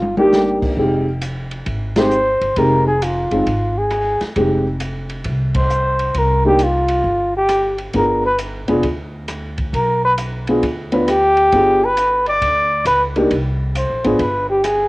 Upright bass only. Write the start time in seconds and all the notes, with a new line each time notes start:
Already playing: G1
0.77 F1
1.66 G#1
2.41 G1
2.57 F1
3.31 F#1
3.47 G#1
4.21 muted upright bass stroke
4.36 F1
5.25 C2
6.15 C2
7.04 G1
7.94 G1
8.69 F1
8.83 D2
9.73 B1
10.63 D2
11.53 G1
12.42 D2
12.85 C#2
13.31 C2
13.90 A#1
14.06 G#1
14.19 G1